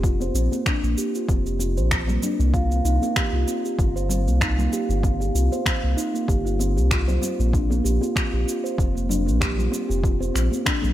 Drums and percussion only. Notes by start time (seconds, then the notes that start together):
0.03 kick, cabasa
0.20 high conga, cabasa
0.35 cabasa
0.52 high conga, cabasa
0.66 finger snap, kick, cabasa
0.84 cabasa
0.98 cabasa
1.15 cabasa
1.29 kick, cabasa
1.46 cabasa
1.59 muted conga, cabasa
1.77 cabasa
1.91 finger snap, kick, cabasa
2.08 muted conga, low conga, cabasa
2.22 muted conga, low conga, cabasa
2.40 cabasa
2.54 kick, cabasa
2.70 high conga, cabasa
2.85 cabasa
3.02 high conga, cabasa
3.16 finger snap, kick, cabasa
3.48 cabasa
3.65 cabasa
3.79 kick, cabasa
3.97 cabasa
4.09 low conga, cabasa
4.28 cabasa
4.41 finger snap, kick, cabasa
4.58 low conga, cabasa
4.72 muted conga, cabasa
4.90 cabasa
5.03 kick, cabasa
5.20 high conga, cabasa
5.36 cabasa
5.52 high conga, cabasa
5.65 finger snap, kick, muted conga, cabasa
5.98 cabasa
6.15 cabasa
6.28 kick, cabasa
6.47 cabasa
6.59 muted conga, cabasa
6.78 cabasa
6.91 finger snap, kick, cabasa
7.08 muted conga, low conga, cabasa
7.22 muted conga, low conga, cabasa
7.40 cabasa
7.53 kick, cabasa
7.70 high conga, cabasa
7.86 cabasa
8.01 high conga, cabasa
8.16 finger snap, kick, cabasa
8.48 cabasa
8.66 cabasa
8.78 kick, cabasa
8.97 cabasa
9.09 low conga, cabasa
9.28 cabasa
9.41 finger snap, kick, cabasa
9.58 low conga, cabasa
9.72 muted conga, cabasa
9.91 cabasa
10.04 kick, cabasa
10.20 high conga, cabasa
10.36 finger snap, cabasa
10.52 high conga, cabasa
10.65 finger snap, kick, muted conga, cabasa
10.82 high conga, low conga, cabasa